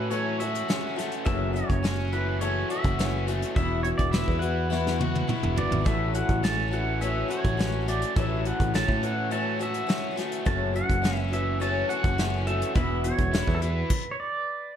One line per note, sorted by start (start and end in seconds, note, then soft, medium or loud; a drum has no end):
0.00 0.40 A2 medium
0.00 0.61 A2 medium
0.00 1.29 E3 medium
0.00 0.10 F#3 soft
0.00 0.11 A3 soft
0.00 0.97 A3 medium
0.00 0.11 C#4 soft
0.00 0.11 F#4 soft
0.00 0.12 B4 medium
0.10 0.40 A2 medium
0.10 0.40 E3 medium
0.10 0.40 F#3 medium
0.10 0.40 A3 medium
0.10 0.40 C#4 medium
0.10 0.39 F#4 medium
0.10 0.39 C#5 medium
0.10 closed hi-hat medium
0.40 0.67 F#3 soft
0.40 0.68 A3 soft
0.40 0.68 C#4 soft
0.40 0.69 F#4 medium
0.40 0.94 E5 medium
0.40 closed hi-hat medium
0.55 closed hi-hat medium
0.68 0.97 F#3 medium
0.68 0.97 A3 medium
0.68 0.96 C#4 medium
0.68 0.95 F#4 medium
0.68 snare loud
0.68 closed hi-hat medium
0.96 1.25 F#3 soft
0.96 1.25 A3 soft
0.96 1.25 C#4 soft
0.96 1.26 F#4 soft
0.96 snare soft
0.96 closed hi-hat medium
1.12 closed hi-hat medium
1.25 1.61 F#1 loud
1.25 1.54 F#2 medium
1.25 1.55 C#3 medium
1.25 1.54 E3 medium
1.25 1.54 A3 medium
1.25 1.53 C#4 medium
1.25 1.52 F#4 medium
1.25 1.54 E5 medium
1.25 kick loud
1.25 closed hi-hat medium
1.53 1.81 E3 soft
1.53 1.82 A3 soft
1.53 1.83 C#4 soft
1.53 1.83 F#4 soft
1.53 2.08 C#5 medium
1.53 closed hi-hat medium
1.70 2.63 F#1 medium
1.70 kick medium
1.70 closed hi-hat soft
1.83 2.12 E3 soft
1.83 2.13 A3 soft
1.83 2.13 C#4 medium
1.83 2.12 F#4 medium
1.83 snare loud
1.83 closed hi-hat medium
2.12 2.40 E3 soft
2.12 2.41 A3 soft
2.12 2.41 C#4 soft
2.12 2.41 F#4 soft
2.12 2.42 B4 medium
2.12 closed hi-hat soft
2.41 2.70 F#2 medium
2.41 2.70 C#3 medium
2.41 2.70 E3 medium
2.41 2.70 A3 medium
2.41 2.70 C#4 medium
2.41 2.69 F#4 medium
2.41 2.71 C#5 medium
2.41 closed hi-hat medium
2.70 2.97 E3 soft
2.70 2.99 A3 soft
2.70 2.99 C#4 soft
2.70 2.99 F#4 soft
2.70 3.24 E5 medium
2.70 closed hi-hat medium
2.84 3.43 F#1 loud
2.84 kick medium
2.84 closed hi-hat medium
2.99 3.28 E3 medium
2.99 3.28 A3 medium
2.99 3.27 C#4 medium
2.99 3.26 F#4 medium
2.99 snare medium
2.99 closed hi-hat medium
3.27 3.55 E3 soft
3.27 3.57 A3 soft
3.27 3.57 C#4 soft
3.27 3.56 F#4 medium
3.27 closed hi-hat medium
3.42 closed hi-hat medium
3.55 3.91 E1 medium
3.55 4.99 E2 medium
3.55 3.85 E3 medium
3.55 3.85 B3 medium
3.55 3.84 E4 medium
3.55 3.83 F#4 medium
3.55 3.83 E5 medium
3.55 kick loud
3.55 closed hi-hat medium
3.83 4.13 B3 soft
3.83 4.14 E4 soft
3.83 4.13 F#4 soft
3.83 3.88 C#5 medium
3.83 closed hi-hat medium
3.98 4.23 E1 medium
3.98 4.13 D5 medium
3.98 kick medium
3.98 closed hi-hat medium
4.11 4.43 E3 soft
4.11 4.43 B3 medium
4.11 4.39 E5 medium
4.11 snare loud
4.11 closed hi-hat medium
4.16 4.42 E4 medium
4.16 4.40 F#4 medium
4.28 5.21 E2 medium
4.28 kick medium
4.39 6.72 E3 medium
4.39 4.71 F#4 soft
4.39 5.23 F#5 medium
4.39 closed hi-hat medium
4.43 4.70 B3 soft
4.43 4.71 E4 soft
4.70 4.99 E3 medium
4.70 5.00 B3 medium
4.70 5.00 E4 medium
4.70 4.98 F#4 medium
4.70 snare soft
4.87 snare soft
4.99 5.27 B3 soft
4.99 5.28 E4 soft
4.99 5.29 F#4 soft
4.99 high tom medium
5.15 high tom medium
5.28 5.57 E3 medium
5.28 5.57 B3 medium
5.28 5.57 E4 medium
5.28 5.55 F#4 medium
5.28 mid tom medium
5.43 5.56 E1 medium
5.43 mid tom medium
5.56 5.70 F#1 medium
5.56 5.86 B3 soft
5.56 5.86 E4 soft
5.56 5.85 F#4 soft
5.56 5.88 D5 medium
5.56 floor tom medium
5.71 5.84 G#1 medium
5.71 floor tom medium
5.84 6.21 A1 loud
5.84 6.14 A2 medium
5.84 6.15 E3 medium
5.84 6.15 F#3 medium
5.84 6.15 A3 medium
5.84 6.14 C#4 medium
5.84 6.12 F#4 medium
5.84 6.15 E5 medium
5.84 kick loud
5.84 closed hi-hat medium
6.13 6.42 F#3 soft
6.13 6.42 A3 soft
6.13 6.44 C#4 soft
6.13 6.43 F#4 soft
6.13 6.44 F#5 medium
6.13 closed hi-hat medium
6.29 7.22 A1 medium
6.29 kick medium
6.29 closed hi-hat medium
6.43 6.72 F#3 medium
6.43 6.72 A3 medium
6.43 6.71 C#4 medium
6.43 6.70 F#4 medium
6.43 6.73 A5 medium
6.43 snare loud
6.43 closed hi-hat medium
6.71 9.02 E3 medium
6.71 7.01 F#3 soft
6.71 7.01 A3 soft
6.71 7.01 C#4 soft
6.71 7.01 F#4 soft
6.71 7.03 F#5 medium
6.71 closed hi-hat medium
7.01 7.30 A2 medium
7.01 7.30 E3 medium
7.01 7.30 F#3 medium
7.01 7.29 A3 medium
7.01 7.28 C#4 medium
7.01 7.27 F#4 medium
7.01 7.28 E5 medium
7.01 closed hi-hat medium
7.28 7.56 F#3 soft
7.28 7.57 A3 soft
7.28 7.58 C#4 soft
7.28 7.58 F#4 medium
7.28 7.89 C#5 medium
7.28 closed hi-hat medium
7.45 8.03 A1 medium
7.45 kick medium
7.45 closed hi-hat medium
7.57 7.87 F#3 medium
7.57 7.87 A3 medium
7.57 7.87 C#4 medium
7.57 7.86 F#4 medium
7.57 snare medium
7.57 closed hi-hat medium
7.88 8.16 F#3 soft
7.88 8.17 A3 soft
7.88 8.17 C#4 soft
7.88 8.16 F#4 medium
7.88 8.16 D5 medium
7.88 closed hi-hat medium
8.02 closed hi-hat medium
8.16 8.51 A1 medium
8.16 8.45 A2 medium
8.16 8.46 E3 medium
8.16 8.46 F#3 medium
8.16 8.46 A3 medium
8.16 8.45 C#4 medium
8.16 8.44 F#4 medium
8.16 8.46 E5 medium
8.16 kick loud
8.16 closed hi-hat medium
8.45 8.72 F#3 soft
8.45 8.74 A3 soft
8.45 8.74 C#4 soft
8.45 8.74 F#4 soft
8.45 8.75 F#5 medium
8.45 closed hi-hat medium
8.60 8.83 A1 medium
8.60 kick medium
8.60 closed hi-hat medium
8.74 9.02 F#3 soft
8.74 9.03 A3 medium
8.74 9.03 C#4 medium
8.74 9.01 F#4 medium
8.74 9.04 A5 medium
8.74 snare loud
8.74 closed hi-hat medium
8.88 9.81 A2 medium
8.88 kick medium
9.02 10.49 E3 medium
9.02 9.30 F#3 soft
9.02 9.30 A3 soft
9.02 9.31 C#4 soft
9.02 9.31 F#4 soft
9.02 9.30 F#5 medium
9.02 closed hi-hat medium
9.31 9.60 A2 medium
9.31 9.60 E3 medium
9.31 9.60 F#3 medium
9.31 9.60 A3 medium
9.31 9.59 C#4 medium
9.31 9.58 F#4 medium
9.31 9.58 A5 medium
9.31 closed hi-hat medium
9.59 9.85 F#3 soft
9.59 9.87 A3 soft
9.59 9.88 C#4 soft
9.59 9.88 F#4 medium
9.59 10.15 E5 medium
9.59 closed hi-hat medium
9.74 closed hi-hat medium
9.87 10.16 F#3 medium
9.87 10.17 A3 medium
9.87 10.16 C#4 medium
9.87 10.15 F#4 medium
9.87 snare medium
9.87 closed hi-hat medium
10.16 10.46 F#3 soft
10.16 10.45 A3 soft
10.16 10.46 C#4 soft
10.16 10.45 F#4 soft
10.16 snare soft
10.16 closed hi-hat medium
10.32 closed hi-hat medium
10.45 10.81 F#1 loud
10.45 10.74 F#2 medium
10.45 10.74 C#3 medium
10.45 10.75 E3 medium
10.45 10.74 A3 medium
10.45 10.74 C#4 medium
10.45 10.72 F#4 medium
10.45 10.76 A5 medium
10.45 kick loud
10.45 closed hi-hat medium
10.73 11.01 E3 soft
10.73 11.01 A3 soft
10.73 11.02 C#4 soft
10.73 11.03 F#4 soft
10.73 11.17 F#5 medium
10.73 closed hi-hat medium
10.90 11.82 F#1 medium
10.90 kick medium
10.90 closed hi-hat medium
11.02 11.31 E3 medium
11.02 11.31 A3 medium
11.02 11.31 C#4 medium
11.02 11.30 F#4 medium
11.02 snare loud
11.02 closed hi-hat medium
11.17 11.29 E5 medium
11.31 11.60 E3 soft
11.31 11.60 A3 soft
11.31 11.60 C#4 soft
11.31 11.60 F#4 soft
11.31 11.62 E5 medium
11.31 closed hi-hat soft
11.60 11.89 F#2 medium
11.60 11.90 C#3 medium
11.60 11.90 E3 medium
11.60 11.89 A3 medium
11.60 11.89 C#4 medium
11.60 11.88 F#4 medium
11.60 11.89 A5 medium
11.60 closed hi-hat medium
11.89 12.17 E3 soft
11.89 12.18 A3 soft
11.89 12.19 C#4 soft
11.89 12.18 F#4 medium
11.89 12.48 F#5 medium
11.89 closed hi-hat medium
12.04 12.62 F#1 loud
12.04 kick medium
12.04 closed hi-hat medium
12.18 12.47 E3 medium
12.18 12.47 A3 medium
12.18 12.47 C#4 medium
12.18 12.46 F#4 medium
12.18 snare loud
12.18 closed hi-hat medium
12.47 12.74 E3 soft
12.47 12.75 A3 soft
12.47 12.76 C#4 soft
12.47 12.76 F#4 medium
12.47 12.74 E5 medium
12.47 closed hi-hat medium
12.62 closed hi-hat medium
12.75 13.11 E1 medium
12.75 13.90 E2 medium
12.75 13.04 E3 medium
12.75 13.04 B3 medium
12.75 13.05 E4 medium
12.75 13.03 F#4 medium
12.75 13.02 E5 medium
12.75 kick loud
12.75 closed hi-hat medium
13.04 13.34 B3 soft
13.04 13.34 E4 soft
13.04 13.33 F#4 medium
13.04 13.56 C#5 medium
13.04 closed hi-hat medium
13.18 13.42 E1 medium
13.18 kick medium
13.18 closed hi-hat medium
13.33 13.62 E3 medium
13.33 13.63 B3 medium
13.33 13.61 E4 medium
13.33 13.60 F#4 medium
13.33 snare loud
13.33 closed hi-hat medium
13.48 13.82 E2 medium
13.48 kick medium
13.55 13.61 A4 medium
13.61 13.90 E3 medium
13.61 13.92 B3 soft
13.61 13.91 E4 soft
13.61 13.90 F#4 soft
13.61 14.72 B4 medium
13.61 closed hi-hat medium
13.90 kick medium
13.90 crash medium
14.11 14.19 C#5 soft
14.20 14.76 D5 medium